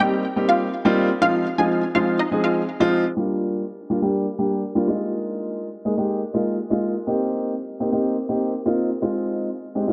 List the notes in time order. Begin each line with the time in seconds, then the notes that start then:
0.00 G3 A#3 C4 D#4 G4 G5
0.36 G3 A#3 C4 D#4 G4
0.49 F4 F5
0.85 G3 A#3 C4 D#4 F4
1.22 F3 G#3 C4 D#4 F4 F5
1.58 F3 G#3 C4 D#4 F4 G#4 G#5
1.95 F3 G#3 C4 D#4 F4 F5
2.19 D#4 D#5
2.31 F3 G#3 C4 D#4 G#4
2.44 F4 F5
2.80 F3 G#3 C4 D#4 F4
3.17 G3 A#3 D4 F4
3.90 G3 A#3 D4 F4
4.02 G3 A#3 D4 G4
4.39 G3 A#3 D4 G4
4.75 G3 A#3 D4 F4
4.87 G#3 A#3 D#4 F4
5.85 G#3 A#3 D#4 G#4
5.97 G#3 A#3 D#4 G4
6.34 G#3 A#3 D#4 F4
6.70 G#3 A#3 D#4 F4
7.07 A#3 C4 D#4 G4
7.80 A#3 C4 D#4 G4
7.92 A#3 C4 D#4 G4
8.29 A#3 C4 D#4 G4
8.65 A#3 C4 D#4 F4
9.02 G#3 C4 D#4 F4
9.75 G#3 C4 D#4 G4
9.87 G#3 C4 D#4 F4